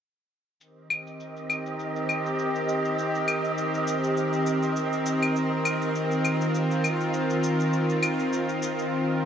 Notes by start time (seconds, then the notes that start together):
0.60 D#3 C4 G4 A#4 D#5, cabasa
0.90 cabasa, claves
1.07 cabasa
1.20 cabasa
1.36 cabasa
1.50 cabasa, claves
1.66 cabasa
1.79 cabasa
1.96 cabasa
2.09 cabasa, claves
2.26 cabasa
2.39 cabasa
2.56 cabasa
2.69 cabasa
2.85 cabasa
2.99 cabasa
3.15 cabasa
3.28 cabasa, claves
3.45 cabasa
3.58 cabasa
3.74 cabasa
3.87 cabasa
4.04 cabasa
4.17 cabasa
4.33 cabasa
4.46 cabasa
4.63 cabasa
4.76 cabasa
4.93 cabasa
5.06 cabasa
5.22 cabasa, claves
5.36 F4, cabasa
5.65 cabasa, claves
5.82 cabasa
5.95 cabasa
6.11 cabasa
6.25 cabasa, claves
6.41 cabasa
6.55 cabasa
6.71 cabasa
6.84 cabasa, claves
7.01 cabasa
7.14 cabasa
7.30 cabasa
7.44 cabasa
7.60 cabasa
7.73 cabasa
7.90 cabasa
8.03 cabasa, claves
8.19 cabasa
8.33 cabasa
8.49 cabasa
8.62 cabasa
8.79 cabasa